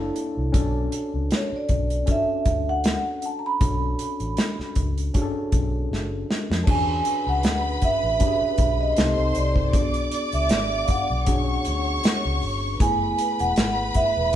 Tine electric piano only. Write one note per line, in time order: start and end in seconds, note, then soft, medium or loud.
0.00 0.39 A#3 medium
0.00 0.39 D4 medium
0.00 0.40 E4 medium
0.00 0.40 A4 loud
0.00 0.56 C#5 medium
0.52 1.53 C#4 medium
0.52 1.54 D4 medium
0.52 1.54 F#4 medium
0.52 1.54 A4 medium
2.06 3.07 C#4 medium
2.06 3.07 D4 medium
2.06 3.07 F#4 medium
2.06 3.07 A4 medium
3.61 4.61 C#4 medium
3.61 4.61 D4 medium
3.61 4.61 F#4 medium
3.61 4.62 A4 medium
5.14 6.14 C#4 medium
5.14 6.14 D4 medium
5.14 6.15 F#4 medium
5.14 5.22 G#4 medium
5.22 6.18 A4 medium
6.66 7.67 C#4 medium
6.66 7.67 D4 medium
6.66 7.67 F#4 medium
6.66 7.67 G#4 medium
8.20 8.97 C#4 medium
8.20 8.97 D4 medium
8.20 8.97 F#4 medium
8.20 8.28 G4 medium
8.27 9.01 G#4 medium
8.97 9.60 C4 medium
8.97 9.60 D#4 medium
8.97 9.60 G4 medium
8.97 9.61 A4 medium
9.73 10.73 B3 medium
9.73 10.74 D4 medium
9.73 10.74 F#4 medium
9.73 10.74 G#4 medium
11.26 12.26 C#4 medium
11.26 12.27 D4 medium
11.26 12.27 F#4 medium
11.26 12.27 G#4 medium
12.80 13.80 A3 medium
12.80 13.80 B3 medium
12.80 13.81 E4 medium
12.80 13.81 G#4 medium